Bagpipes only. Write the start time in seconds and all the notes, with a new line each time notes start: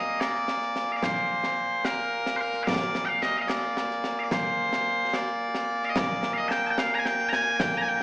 Already playing: A#2 A#3 D#5
0.21 D5
0.92 F5
0.96 D5
1.03 C5
1.85 A#4
2.36 C5
2.41 A#4
2.64 D5 F5
3.05 F5 G5
3.22 D#5
3.37 D#5 F5
3.48 D5
4.19 F5
4.24 D5
4.32 C5
5.14 D5
5.85 F5
5.89 D#5
5.97 D5
6.34 D#5 F5
6.48 G5 A5
6.67 G5 A5
6.79 F5
6.95 G#5 A#5
7.06 G5
7.29 G#5 A#5
7.60 G5
7.77 G#5 A#5
7.88 G5